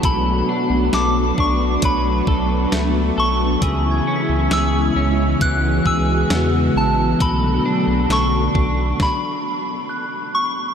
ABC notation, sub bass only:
X:1
M:4/4
L:1/16
Q:1/4=67
K:Bdor
V:1 name="Sub bass" clef=bass
B,,,2 z B,,, B,,,2 B,,,2 B,,,2 B,,,2 C,,2 B,,,2 | C,,2 z C,, C,,2 C,,2 C,,2 C,,2 E,,2 A,,,2 | B,,,2 z B,,, B,,,2 B,,,2 z8 |]